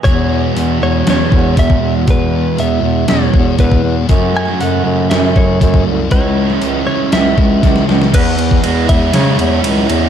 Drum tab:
CC |----------------|----------------|----------------|----------------|
RD |----------------|----------------|----------------|----------------|
HH |o---o---o---o---|o---o---o---o---|o---o---o---o---|o---o---o---o---|
SD |--------o-------|--------o-------|---o----o-------|---o----o---oooo|
BD |o---------o-oo--|o---------o-oo--|o---------o-oo--|o---------o-o---|

CC |x---------------|
RD |x-x-x-x-x-x-x-x-|
HH |----------------|
SD |--------o----o--|
BD |o--o--o---------|